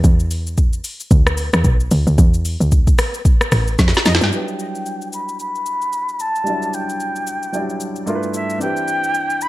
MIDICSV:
0, 0, Header, 1, 5, 480
1, 0, Start_track
1, 0, Key_signature, 1, "minor"
1, 0, Tempo, 535714
1, 35, Time_signature, 4, 2, 24, 8
1, 8499, End_track
2, 0, Start_track
2, 0, Title_t, "Flute"
2, 0, Program_c, 0, 73
2, 3644, Note_on_c, 0, 75, 89
2, 3698, Note_off_c, 0, 75, 0
2, 3884, Note_on_c, 0, 79, 105
2, 4564, Note_off_c, 0, 79, 0
2, 4603, Note_on_c, 0, 83, 95
2, 4823, Note_off_c, 0, 83, 0
2, 4844, Note_on_c, 0, 83, 114
2, 5563, Note_on_c, 0, 81, 105
2, 5577, Note_off_c, 0, 83, 0
2, 6043, Note_on_c, 0, 79, 91
2, 6057, Note_off_c, 0, 81, 0
2, 7237, Note_off_c, 0, 79, 0
2, 7482, Note_on_c, 0, 76, 88
2, 7702, Note_off_c, 0, 76, 0
2, 7722, Note_on_c, 0, 79, 108
2, 8442, Note_on_c, 0, 83, 100
2, 8455, Note_off_c, 0, 79, 0
2, 8499, Note_off_c, 0, 83, 0
2, 8499, End_track
3, 0, Start_track
3, 0, Title_t, "Grand piano"
3, 0, Program_c, 1, 0
3, 3849, Note_on_c, 1, 54, 48
3, 3862, Note_on_c, 1, 62, 55
3, 3874, Note_off_c, 1, 54, 0
3, 3875, Note_on_c, 1, 64, 59
3, 3887, Note_on_c, 1, 54, 59
3, 3900, Note_on_c, 1, 71, 68
3, 3907, Note_on_c, 1, 55, 62
3, 4066, Control_c, 1, 64, 127
3, 5753, Note_off_c, 1, 62, 0
3, 5756, Note_off_c, 1, 55, 0
3, 5759, Note_off_c, 1, 64, 0
3, 5765, Note_off_c, 1, 54, 0
3, 5769, Note_on_c, 1, 55, 66
3, 5772, Note_off_c, 1, 71, 0
3, 5782, Note_on_c, 1, 62, 60
3, 5795, Note_on_c, 1, 64, 58
3, 5807, Note_on_c, 1, 54, 59
3, 5820, Note_on_c, 1, 74, 69
3, 6722, Note_off_c, 1, 55, 0
3, 6729, Note_off_c, 1, 54, 0
3, 6729, Note_off_c, 1, 62, 0
3, 6736, Note_off_c, 1, 64, 0
3, 6742, Note_on_c, 1, 54, 48
3, 6748, Note_on_c, 1, 62, 54
3, 6749, Note_off_c, 1, 74, 0
3, 6754, Note_on_c, 1, 64, 54
3, 6755, Note_off_c, 1, 54, 0
3, 6761, Note_on_c, 1, 54, 54
3, 6767, Note_on_c, 1, 74, 64
3, 6799, Note_on_c, 1, 55, 59
3, 7219, Note_off_c, 1, 62, 0
3, 7222, Note_on_c, 1, 43, 78
3, 7224, Note_off_c, 1, 64, 0
3, 7227, Note_on_c, 1, 57, 65
3, 7232, Note_on_c, 1, 62, 66
3, 7237, Note_on_c, 1, 64, 70
3, 7238, Note_off_c, 1, 54, 0
3, 7241, Note_off_c, 1, 74, 0
3, 7243, Note_on_c, 1, 65, 70
3, 7247, Control_c, 1, 64, 0
3, 7247, Note_on_c, 1, 70, 68
3, 7257, Note_off_c, 1, 55, 0
3, 7305, Note_on_c, 1, 71, 80
3, 7308, Note_off_c, 1, 70, 0
3, 7411, Control_c, 1, 64, 127
3, 7689, Note_on_c, 1, 52, 63
3, 7696, Note_off_c, 1, 62, 0
3, 7699, Note_on_c, 1, 60, 58
3, 7706, Note_off_c, 1, 64, 0
3, 7708, Note_off_c, 1, 43, 0
3, 7709, Note_on_c, 1, 62, 56
3, 7711, Note_off_c, 1, 57, 0
3, 7719, Note_off_c, 1, 65, 0
3, 7719, Note_on_c, 1, 64, 59
3, 7725, Control_c, 1, 64, 0
3, 7727, Note_off_c, 1, 71, 0
3, 7730, Note_on_c, 1, 67, 59
3, 7740, Note_on_c, 1, 71, 69
3, 7891, Control_c, 1, 64, 127
3, 8499, Note_off_c, 1, 52, 0
3, 8499, Note_off_c, 1, 60, 0
3, 8499, Note_off_c, 1, 62, 0
3, 8499, Note_off_c, 1, 64, 0
3, 8499, Note_off_c, 1, 67, 0
3, 8499, Note_off_c, 1, 71, 0
3, 8499, End_track
4, 0, Start_track
4, 0, Title_t, "Log drum bass"
4, 0, Program_c, 2, 39
4, 35, Note_on_c, 2, 40, 113
4, 719, Note_off_c, 2, 40, 0
4, 993, Note_on_c, 2, 38, 102
4, 1341, Note_off_c, 2, 38, 0
4, 1374, Note_on_c, 2, 40, 95
4, 1466, Note_off_c, 2, 40, 0
4, 1474, Note_on_c, 2, 35, 88
4, 1694, Note_off_c, 2, 35, 0
4, 1715, Note_on_c, 2, 38, 98
4, 1842, Note_off_c, 2, 38, 0
4, 1854, Note_on_c, 2, 38, 94
4, 1946, Note_off_c, 2, 38, 0
4, 1955, Note_on_c, 2, 40, 119
4, 2301, Note_off_c, 2, 40, 0
4, 2334, Note_on_c, 2, 38, 90
4, 2645, Note_off_c, 2, 38, 0
4, 3154, Note_on_c, 2, 33, 94
4, 3374, Note_off_c, 2, 33, 0
4, 3394, Note_on_c, 2, 41, 109
4, 3522, Note_off_c, 2, 41, 0
4, 3634, Note_on_c, 2, 41, 97
4, 3762, Note_off_c, 2, 41, 0
4, 3774, Note_on_c, 2, 43, 93
4, 3866, Note_off_c, 2, 43, 0
4, 8499, End_track
5, 0, Start_track
5, 0, Title_t, "Drums"
5, 35, Note_on_c, 9, 36, 120
5, 35, Note_on_c, 9, 82, 81
5, 124, Note_off_c, 9, 82, 0
5, 125, Note_off_c, 9, 36, 0
5, 175, Note_on_c, 9, 82, 50
5, 265, Note_off_c, 9, 82, 0
5, 276, Note_on_c, 9, 46, 51
5, 276, Note_on_c, 9, 82, 84
5, 365, Note_off_c, 9, 46, 0
5, 365, Note_off_c, 9, 82, 0
5, 419, Note_on_c, 9, 82, 61
5, 508, Note_off_c, 9, 82, 0
5, 514, Note_on_c, 9, 82, 72
5, 517, Note_on_c, 9, 36, 89
5, 604, Note_off_c, 9, 82, 0
5, 607, Note_off_c, 9, 36, 0
5, 654, Note_on_c, 9, 82, 59
5, 744, Note_off_c, 9, 82, 0
5, 754, Note_on_c, 9, 46, 61
5, 754, Note_on_c, 9, 82, 103
5, 843, Note_off_c, 9, 46, 0
5, 843, Note_off_c, 9, 82, 0
5, 896, Note_on_c, 9, 82, 64
5, 986, Note_off_c, 9, 82, 0
5, 993, Note_on_c, 9, 36, 121
5, 994, Note_on_c, 9, 82, 75
5, 1083, Note_off_c, 9, 36, 0
5, 1083, Note_off_c, 9, 82, 0
5, 1134, Note_on_c, 9, 37, 101
5, 1137, Note_on_c, 9, 82, 51
5, 1224, Note_off_c, 9, 37, 0
5, 1226, Note_off_c, 9, 82, 0
5, 1231, Note_on_c, 9, 46, 57
5, 1231, Note_on_c, 9, 82, 94
5, 1320, Note_off_c, 9, 46, 0
5, 1320, Note_off_c, 9, 82, 0
5, 1372, Note_on_c, 9, 82, 58
5, 1376, Note_on_c, 9, 37, 102
5, 1461, Note_off_c, 9, 82, 0
5, 1466, Note_off_c, 9, 37, 0
5, 1472, Note_on_c, 9, 82, 77
5, 1474, Note_on_c, 9, 36, 97
5, 1561, Note_off_c, 9, 82, 0
5, 1563, Note_off_c, 9, 36, 0
5, 1614, Note_on_c, 9, 82, 46
5, 1704, Note_off_c, 9, 82, 0
5, 1711, Note_on_c, 9, 46, 60
5, 1711, Note_on_c, 9, 82, 105
5, 1801, Note_off_c, 9, 46, 0
5, 1801, Note_off_c, 9, 82, 0
5, 1855, Note_on_c, 9, 82, 58
5, 1945, Note_off_c, 9, 82, 0
5, 1955, Note_on_c, 9, 36, 123
5, 1955, Note_on_c, 9, 82, 77
5, 2044, Note_off_c, 9, 36, 0
5, 2044, Note_off_c, 9, 82, 0
5, 2094, Note_on_c, 9, 82, 52
5, 2184, Note_off_c, 9, 82, 0
5, 2195, Note_on_c, 9, 46, 51
5, 2195, Note_on_c, 9, 82, 86
5, 2285, Note_off_c, 9, 46, 0
5, 2285, Note_off_c, 9, 82, 0
5, 2337, Note_on_c, 9, 82, 61
5, 2427, Note_off_c, 9, 82, 0
5, 2434, Note_on_c, 9, 82, 72
5, 2437, Note_on_c, 9, 36, 87
5, 2523, Note_off_c, 9, 82, 0
5, 2526, Note_off_c, 9, 36, 0
5, 2573, Note_on_c, 9, 82, 56
5, 2574, Note_on_c, 9, 36, 92
5, 2663, Note_off_c, 9, 82, 0
5, 2664, Note_off_c, 9, 36, 0
5, 2673, Note_on_c, 9, 46, 59
5, 2673, Note_on_c, 9, 82, 105
5, 2676, Note_on_c, 9, 37, 97
5, 2763, Note_off_c, 9, 46, 0
5, 2763, Note_off_c, 9, 82, 0
5, 2765, Note_off_c, 9, 37, 0
5, 2816, Note_on_c, 9, 82, 62
5, 2906, Note_off_c, 9, 82, 0
5, 2913, Note_on_c, 9, 36, 120
5, 2914, Note_on_c, 9, 82, 72
5, 3003, Note_off_c, 9, 36, 0
5, 3003, Note_off_c, 9, 82, 0
5, 3055, Note_on_c, 9, 37, 98
5, 3057, Note_on_c, 9, 82, 51
5, 3145, Note_off_c, 9, 37, 0
5, 3147, Note_off_c, 9, 82, 0
5, 3151, Note_on_c, 9, 46, 54
5, 3151, Note_on_c, 9, 82, 89
5, 3154, Note_on_c, 9, 37, 100
5, 3241, Note_off_c, 9, 46, 0
5, 3241, Note_off_c, 9, 82, 0
5, 3243, Note_off_c, 9, 37, 0
5, 3292, Note_on_c, 9, 82, 59
5, 3382, Note_off_c, 9, 82, 0
5, 3392, Note_on_c, 9, 82, 80
5, 3394, Note_on_c, 9, 36, 98
5, 3395, Note_on_c, 9, 38, 62
5, 3475, Note_off_c, 9, 38, 0
5, 3475, Note_on_c, 9, 38, 60
5, 3481, Note_off_c, 9, 82, 0
5, 3483, Note_off_c, 9, 36, 0
5, 3535, Note_on_c, 9, 82, 48
5, 3556, Note_off_c, 9, 38, 0
5, 3556, Note_on_c, 9, 38, 83
5, 3624, Note_off_c, 9, 82, 0
5, 3632, Note_on_c, 9, 46, 57
5, 3632, Note_on_c, 9, 82, 100
5, 3635, Note_off_c, 9, 38, 0
5, 3635, Note_on_c, 9, 38, 77
5, 3716, Note_off_c, 9, 38, 0
5, 3716, Note_on_c, 9, 38, 106
5, 3722, Note_off_c, 9, 46, 0
5, 3722, Note_off_c, 9, 82, 0
5, 3776, Note_on_c, 9, 82, 57
5, 3796, Note_off_c, 9, 38, 0
5, 3796, Note_on_c, 9, 38, 98
5, 3865, Note_off_c, 9, 82, 0
5, 3875, Note_on_c, 9, 82, 72
5, 3885, Note_off_c, 9, 38, 0
5, 3965, Note_off_c, 9, 82, 0
5, 4015, Note_on_c, 9, 82, 47
5, 4104, Note_off_c, 9, 82, 0
5, 4115, Note_on_c, 9, 82, 79
5, 4205, Note_off_c, 9, 82, 0
5, 4257, Note_on_c, 9, 82, 55
5, 4347, Note_off_c, 9, 82, 0
5, 4353, Note_on_c, 9, 82, 67
5, 4443, Note_off_c, 9, 82, 0
5, 4494, Note_on_c, 9, 82, 53
5, 4583, Note_off_c, 9, 82, 0
5, 4593, Note_on_c, 9, 82, 99
5, 4683, Note_off_c, 9, 82, 0
5, 4736, Note_on_c, 9, 82, 56
5, 4825, Note_off_c, 9, 82, 0
5, 4833, Note_on_c, 9, 82, 67
5, 4923, Note_off_c, 9, 82, 0
5, 4976, Note_on_c, 9, 82, 46
5, 5066, Note_off_c, 9, 82, 0
5, 5071, Note_on_c, 9, 82, 86
5, 5160, Note_off_c, 9, 82, 0
5, 5211, Note_on_c, 9, 82, 53
5, 5301, Note_off_c, 9, 82, 0
5, 5311, Note_on_c, 9, 82, 67
5, 5401, Note_off_c, 9, 82, 0
5, 5454, Note_on_c, 9, 82, 42
5, 5543, Note_off_c, 9, 82, 0
5, 5551, Note_on_c, 9, 82, 88
5, 5640, Note_off_c, 9, 82, 0
5, 5694, Note_on_c, 9, 82, 51
5, 5784, Note_off_c, 9, 82, 0
5, 5794, Note_on_c, 9, 82, 73
5, 5884, Note_off_c, 9, 82, 0
5, 5934, Note_on_c, 9, 82, 45
5, 6024, Note_off_c, 9, 82, 0
5, 6035, Note_on_c, 9, 82, 74
5, 6124, Note_off_c, 9, 82, 0
5, 6177, Note_on_c, 9, 82, 57
5, 6267, Note_off_c, 9, 82, 0
5, 6273, Note_on_c, 9, 82, 66
5, 6363, Note_off_c, 9, 82, 0
5, 6413, Note_on_c, 9, 82, 52
5, 6502, Note_off_c, 9, 82, 0
5, 6513, Note_on_c, 9, 82, 97
5, 6602, Note_off_c, 9, 82, 0
5, 6655, Note_on_c, 9, 82, 58
5, 6744, Note_off_c, 9, 82, 0
5, 6753, Note_on_c, 9, 82, 69
5, 6843, Note_off_c, 9, 82, 0
5, 6896, Note_on_c, 9, 82, 47
5, 6986, Note_off_c, 9, 82, 0
5, 6991, Note_on_c, 9, 82, 84
5, 7080, Note_off_c, 9, 82, 0
5, 7131, Note_on_c, 9, 82, 54
5, 7220, Note_off_c, 9, 82, 0
5, 7231, Note_on_c, 9, 82, 66
5, 7320, Note_off_c, 9, 82, 0
5, 7373, Note_on_c, 9, 82, 43
5, 7463, Note_off_c, 9, 82, 0
5, 7471, Note_on_c, 9, 82, 94
5, 7560, Note_off_c, 9, 82, 0
5, 7614, Note_on_c, 9, 82, 54
5, 7704, Note_off_c, 9, 82, 0
5, 7714, Note_on_c, 9, 82, 74
5, 7804, Note_off_c, 9, 82, 0
5, 7854, Note_on_c, 9, 82, 45
5, 7944, Note_off_c, 9, 82, 0
5, 7955, Note_on_c, 9, 82, 80
5, 8044, Note_off_c, 9, 82, 0
5, 8097, Note_on_c, 9, 82, 57
5, 8186, Note_off_c, 9, 82, 0
5, 8193, Note_on_c, 9, 82, 68
5, 8283, Note_off_c, 9, 82, 0
5, 8333, Note_on_c, 9, 82, 53
5, 8422, Note_off_c, 9, 82, 0
5, 8432, Note_on_c, 9, 82, 92
5, 8499, Note_off_c, 9, 82, 0
5, 8499, End_track
0, 0, End_of_file